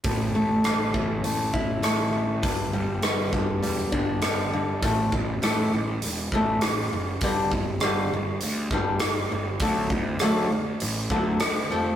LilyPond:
<<
  \new Staff \with { instrumentName = "Steel-string acoustic guitar" } { \clef bass \time 4/4 \key a \mixolydian \tempo 4 = 100 a,8 a8 cis'8 e8 a8 e'8 a8 e8 | g,8 g8 b8 d8 g8 d'8 g8 d8 | <a, e a>8 <a, e>8 <a, e a>8 <a, e>8 <a, e>8 <a, e a>8 <a, e>8 <a, e>8 | <g, d g>8 <g, d>8 <g, d g>8 <g, d>8 <g, d>8 <g, d g>8 <g, d>8 <g, d>8 |
<d fis a>8 <d fis>8 <d fis a>8 <d fis>8 <d fis>8 <d fis a>8 <d fis>8 <f a c'>8 | }
  \new Staff \with { instrumentName = "Picked electric bass" } { \clef bass \time 4/4 \key a \mixolydian a,,8 a,,8 a,,8 a,,8 a,,4 a,,4 | g,,8 g,,8 g,,8 g,,8 e,,8 g,,8 g,,8 g,,8 | a,,8 a,,8 a,,8 a,,8 e,,8 a,,8 a,,8 fis,,8 | g,,8 g,,8 g,,8 g,,8 d,8 g,,8 g,,8 g,,8 |
d,8 d,8 d,8 d,8 a,,8 d,8 d,8 f,,8 | }
  \new DrumStaff \with { instrumentName = "Drums" } \drummode { \time 4/4 <hho bd>4 <hho ss>8 bd8 hho8 bd8 <hho ss>4 | <hho bd>4 <hho ss>8 bd8 hho8 bd8 <hho ss>4 | <hho bd>8 bd8 <hho ss>4 hho8 bd8 <hho ss>4 | <hho bd>8 bd8 <hho ss>4 hho8 bd8 <hho ss>4 |
<hho bd>8 bd8 <hho ss>4 hho8 bd8 <hho ss>4 | }
>>